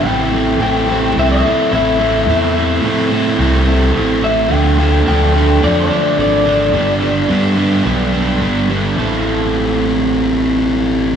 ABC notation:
X:1
M:4/4
L:1/16
Q:1/4=107
K:Am
V:1 name="Clean electric guitar"
g4 g4 e e3 e4- | e4 z8 z2 e2 | g4 g4 d d3 d4- | d4 z12 |
z16 |]
V:2 name="Distorted electric guitar"
[A,,A,CEA]2 [A,,A,CEA]2 [A,,A,CEA]2 [A,,A,CEA]2 [A,,A,CEA]2 [A,,A,CEA]2 [A,,A,CEA]2 [A,,A,CEA]2 | [A,,A,CEA]2 [A,,A,CEA]2 [A,,A,CEA]2 [A,,A,CEA]2 [A,,A,CEA]2 [A,,A,CEA]2 [A,,A,CEA]2 [A,,A,CEA]2 | [D,DFA]2 [D,DFA]2 [D,DFA]2 [D,DFA]2 [D,DFA]2 [D,DFA]2 [D,DFA]2 [D,DFA]2 | [G,B,DB]2 [G,B,DB]2 [G,B,DB]2 [G,B,DB]2 [G,B,DB]2 [G,B,DB]2 [G,B,DB]2 [G,B,DB]2 |
[A,,E,CEA]16 |]
V:3 name="Overdriven electric guitar"
[A,,E,A,CE]2 [A,,E,A,CE]2 [A,,E,A,CE]2 [A,,E,A,CE]2 [A,,E,A,CE]2 [A,,E,A,CE]2 [A,,E,A,CE]2 [A,,E,A,CE]2 | [A,,E,A,CE]2 [A,,E,A,CE]2 [A,,E,A,CE]2 [A,,E,A,CE]2 [A,,E,A,CE]2 [A,,E,A,CE]2 [A,,E,A,CE]2 [A,,E,A,CE]2 | [D,F,A,D]2 [D,F,A,D]2 [D,F,A,D]2 [D,F,A,D]2 [D,F,A,D]2 [D,F,A,D]2 [D,F,A,D]2 [D,F,A,D]2 | [G,,D,G,B,D]2 [G,,D,G,B,D]2 [G,,D,G,B,D]2 [G,,D,G,B,D]2 [G,,D,G,B,D]2 [G,,D,G,B,D]2 [G,,D,G,B,D]2 [G,,D,G,B,D]2 |
[A,,E,A,CEA]16 |]
V:4 name="Fingered electric bass" clef=bass
A,,,4 A,,,4 C,,2 z2 A,,,4 | E,,4 A,,4 C,,4 A,,,4 | D,,4 D,,4 F,,2 z2 ^G,,,4 | G,,,4 G,,4 B,,,4 G,,,4 |
A,,,16 |]